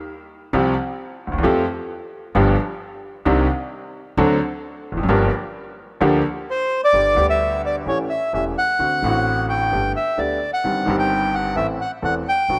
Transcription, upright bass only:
0.53 0.73 C2 medium
1.28 1.33 D2 soft
1.33 1.38 D#2 medium
1.38 1.44 E2 medium
1.45 1.64 F2 medium
2.35 2.54 G1 medium
3.26 3.45 C2 medium
4.17 4.37 D2 medium
4.92 4.96 E1 soft
4.97 5.03 F1 medium
5.03 5.08 F#1 medium
5.08 5.28 G1 medium
6.01 6.21 D2 medium
6.93 7.13 G1 soft
7.17 7.83 D2 medium
7.86 8.06 A1 soft
8.33 8.53 E1 soft
8.79 8.99 D2 soft
9.03 9.69 A1 medium
9.73 9.92 G1 soft
10.18 10.38 D2 soft
10.65 10.84 G1 soft
10.87 11.53 G1 medium
11.56 11.76 A1 soft
12.03 12.23 E1 soft
12.49 12.59 B1 soft

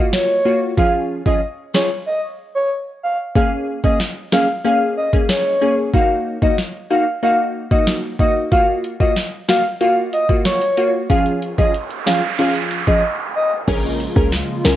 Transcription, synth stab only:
0.00 0.41 A#3 medium
0.00 0.42 F4 medium
0.00 0.42 F#4 medium
0.45 0.75 A#3 medium
0.45 0.75 F4 medium
0.45 0.75 F#4 medium
0.77 1.22 F3 loud
0.77 1.22 C#4 medium
0.77 1.22 F4 medium
0.77 1.22 G#4 loud
1.26 1.41 F3 medium
1.26 1.41 C#4 medium
1.26 1.41 F4 medium
1.26 1.41 G#4 medium
1.74 1.89 F3 medium
1.74 1.89 C#4 medium
1.74 1.89 F4 medium
1.74 1.90 G#4 medium
3.35 3.80 A#3 medium
3.35 3.80 C#4 medium
3.35 3.80 G#4 loud
3.84 3.99 A#3 medium
3.84 3.99 C#4 medium
3.84 3.99 G#4 medium
4.32 4.47 A#3 medium
4.32 4.48 C#4 medium
4.32 4.48 G#4 medium
4.65 5.09 A#3 medium
4.65 5.09 C#4 medium
4.65 5.09 G#4 loud
5.13 5.58 A#3 medium
5.13 5.58 C#4 medium
5.13 5.58 G#4 medium
5.61 5.91 A#3 medium
5.61 5.91 C#4 medium
5.61 5.91 G#4 medium
5.94 6.38 A#3 loud
5.94 6.38 D#4 medium
5.94 6.38 F#4 loud
6.42 6.57 A#3 medium
6.42 6.57 D#4 medium
6.42 6.57 F#4 medium
6.90 7.05 A#3 medium
6.90 7.06 D#4 medium
6.90 7.06 F#4 medium
7.23 7.67 A#3 medium
7.23 7.67 D#4 medium
7.23 7.67 F#4 medium
7.71 8.16 A#3 medium
7.71 8.16 D#4 medium
7.71 8.16 F#4 medium
8.19 8.49 A#3 medium
8.19 8.49 D#4 medium
8.19 8.49 F#4 medium
8.52 8.96 A#3 loud
8.52 8.96 F4 medium
8.52 8.96 F#4 loud
9.00 9.15 A#3 medium
9.00 9.15 F4 medium
9.00 9.15 F#4 medium
9.48 9.63 A#3 medium
9.48 9.64 F4 medium
9.48 9.64 F#4 medium
9.81 10.25 A#3 medium
9.81 10.25 F4 medium
9.81 10.26 F#4 medium
10.29 10.74 A#3 medium
10.29 10.74 F4 medium
10.29 10.74 F#4 medium
10.77 11.07 A#3 medium
10.77 11.07 F4 medium
10.77 11.07 F#4 medium
11.10 11.54 F3 loud
11.10 11.54 C#4 medium
11.10 11.54 F4 medium
11.10 11.55 G#4 loud
11.58 11.73 F3 medium
11.58 11.73 C#4 medium
11.58 11.73 F4 medium
11.58 11.73 G#4 medium
12.06 12.22 F3 medium
12.06 12.22 C#4 medium
12.06 12.22 F4 medium
12.06 12.22 G#4 medium
12.39 12.83 F3 medium
12.39 12.83 C#4 medium
12.39 12.84 F4 medium
12.39 12.84 G#4 loud
12.87 13.03 F3 medium
12.87 13.03 C#4 medium
12.87 13.03 F4 medium
12.87 13.04 G#4 medium
13.68 14.12 C#4 loud
13.68 14.12 G#4 medium
13.68 14.13 A#4 loud
14.16 14.31 C#4 medium
14.16 14.31 G#4 medium
14.16 14.32 A#4 medium
14.64 14.76 C#4 medium
14.64 14.76 G#4 medium
14.64 14.76 A#4 medium

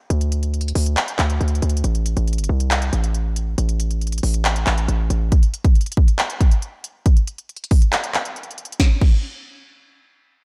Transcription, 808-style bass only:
0.10 0.73 D2 loud
0.75 0.96 D2 loud
1.19 1.40 D2 loud
1.41 1.61 D2 loud
1.62 1.83 D2 loud
1.84 2.15 A1 loud
2.17 2.40 A1 loud
2.38 2.49 G1 loud
2.49 2.91 C2 loud
2.93 3.55 A1 loud
3.58 4.21 A1 loud
4.23 4.65 A1 loud
4.67 4.88 A1 loud
4.88 5.09 A1 loud
5.10 5.31 A1 loud

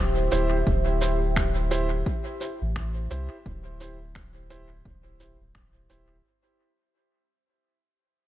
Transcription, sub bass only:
0.00 0.29 D1 medium
0.32 0.63 D1 loud
0.67 2.03 D1 loud
2.61 3.08 A1 medium
3.11 3.28 C2 medium
3.46 4.82 D1 loud
4.85 5.36 D1 medium
5.40 5.87 D1 medium
5.90 6.21 D1 loud

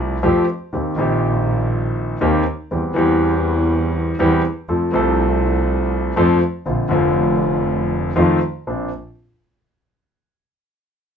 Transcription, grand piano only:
0.00 0.16 C2 medium
0.00 0.16 C3 medium
0.00 0.15 F3 medium
0.00 0.16 A3 medium
0.00 0.17 C4 medium
0.00 0.17 G4 medium
0.23 0.44 F2 medium
0.23 0.44 F3 medium
0.23 0.44 A3 medium
0.23 0.44 C4 medium
0.23 0.44 G4 medium
0.73 0.94 D#2 medium
0.73 0.94 D#3 medium
0.73 0.93 A#3 soft
0.73 0.94 C4 soft
0.73 0.94 G4 soft
0.96 2.16 A#1 medium
0.96 2.16 A#2 medium
0.96 2.15 D#3 medium
0.96 2.16 A#3 medium
0.96 2.16 C4 medium
1.00 2.17 G4 medium
2.21 2.42 D#2 medium
2.21 2.42 D#3 medium
2.21 2.42 A#3 medium
2.21 2.42 C4 medium
2.21 2.42 G4 medium
2.71 2.92 E2 medium
2.71 2.92 E3 medium
2.71 2.92 G3 soft
2.71 2.92 C4 soft
2.71 2.93 G4 medium
2.94 4.14 E2 medium
2.94 4.14 E3 medium
2.94 4.13 G3 medium
2.94 4.14 C4 medium
2.98 4.15 G4 medium
4.19 4.41 E2 medium
4.19 4.41 E3 medium
4.19 4.41 G3 medium
4.19 4.41 C4 medium
4.19 4.41 G4 medium
4.69 4.90 F2 medium
4.69 4.90 F3 medium
4.69 4.90 A3 soft
4.69 4.90 C4 soft
4.69 4.90 A4 soft
4.92 6.11 C2 medium
4.92 6.11 C3 medium
4.92 6.10 F3 medium
4.92 6.11 A3 medium
4.92 6.12 C4 medium
4.92 6.12 A4 medium
6.16 6.38 F2 medium
6.16 6.38 F3 medium
6.16 6.38 A3 medium
6.16 6.38 C4 medium
6.16 6.38 A4 medium
6.65 6.87 A#1 medium
6.65 6.87 A#2 medium
6.65 6.87 D3 soft
6.65 6.87 A#3 soft
6.65 6.87 C4 soft
6.65 6.88 F4 soft
6.89 8.10 F1 medium
6.89 8.10 F2 medium
6.89 8.09 D3 medium
6.89 8.09 A#3 medium
6.89 8.10 C4 medium
6.89 8.11 F4 medium
8.16 8.38 F2 medium
8.16 8.37 D#3 medium
8.16 8.37 F3 medium
8.16 8.37 A3 medium
8.16 8.37 C4 medium
8.16 8.37 F4 medium
8.67 8.88 A#1 medium
8.67 8.88 A#3 soft
8.67 8.88 C4 soft
8.67 8.88 D4 medium

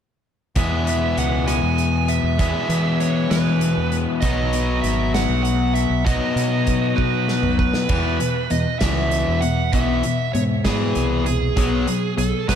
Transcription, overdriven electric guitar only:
0.56 2.37 E2 medium
0.56 2.38 B2 medium
0.56 2.38 E3 medium
0.56 2.38 G#3 medium
0.56 2.40 B3 medium
0.56 2.39 G#4 medium
2.38 4.21 E2 medium
2.38 4.21 B2 medium
2.38 4.21 E3 medium
2.38 4.21 G#3 medium
2.38 4.24 B3 medium
2.38 4.22 G#4 medium
4.22 6.04 B2 medium
4.22 6.04 F#3 medium
4.22 6.06 B3 medium
4.22 6.05 D#4 medium
4.22 6.06 F#4 medium
6.05 7.87 B2 medium
6.05 7.88 F#3 medium
6.05 7.88 B3 medium
6.05 7.88 D#4 medium
6.05 7.89 F#4 medium
7.89 8.18 E2 medium
7.89 8.18 B2 medium
7.89 8.19 E3 medium
8.20 8.48 E2 medium
8.20 8.48 B2 medium
8.51 8.78 E2 medium
8.51 8.79 B2 medium
8.81 9.40 E2 medium
8.81 9.41 B2 medium
8.81 9.41 E3 medium
9.42 9.70 E2 medium
9.42 9.70 B2 medium
9.73 10.02 E2 medium
9.73 10.02 B2 medium
9.73 10.03 E3 medium
10.04 10.32 E2 medium
10.04 10.32 B2 medium
10.35 10.62 E2 medium
10.35 10.62 B2 medium
10.65 11.25 E2 medium
10.65 11.25 B2 medium
10.65 11.25 E3 loud
11.26 11.54 E2 medium
11.26 11.54 B2 medium
11.56 11.85 B2 medium
11.56 11.86 F#3 medium
11.56 11.86 B3 medium
11.87 12.15 B2 medium
11.87 12.15 F#3 medium
12.17 12.45 B2 medium
12.17 12.45 F#3 medium
12.48 12.55 B2 medium
12.48 12.55 F#3 medium
12.48 12.55 B3 medium

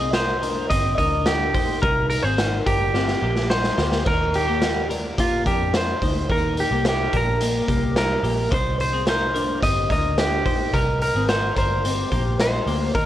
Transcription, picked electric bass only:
0.00 0.67 C2 medium
0.70 0.94 G1 medium
0.98 1.54 D2 medium
1.54 1.78 A#1 medium
1.83 2.18 C2 medium
2.24 2.60 G#1 medium
2.66 3.14 G1 medium
3.22 3.70 A#1 medium
3.78 4.02 D2 medium
4.06 5.18 D#2 medium
5.18 5.42 A#1 medium
5.46 5.93 F2 medium
6.02 6.25 D2 medium
6.30 6.65 D#2 medium
6.71 7.06 C2 medium
7.13 7.60 A#1 medium
7.68 8.15 C2 medium
8.23 8.47 A#1 medium
8.52 9.59 C2 loud
9.63 9.86 G1 medium
9.90 10.46 D2 medium
10.46 10.69 A#1 medium
10.73 11.09 C2 medium
11.15 11.50 G#1 medium
11.56 12.03 G1 medium
12.12 12.59 A#1 medium
12.67 12.91 D2 medium
12.95 13.06 D#2 medium

